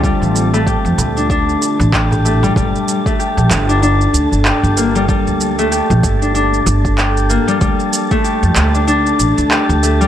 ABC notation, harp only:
X:1
M:4/4
L:1/16
Q:"Swing 16ths" 1/4=95
K:Gm
V:1 name="Harp"
G, z2 A, G3 D D z3 G2 A, G, | G, z2 A, G3 D D z3 G2 B, G, | G, z2 A, G3 D D z3 G2 B, G, | G, z2 A, G3 D D z3 G2 A, G, |]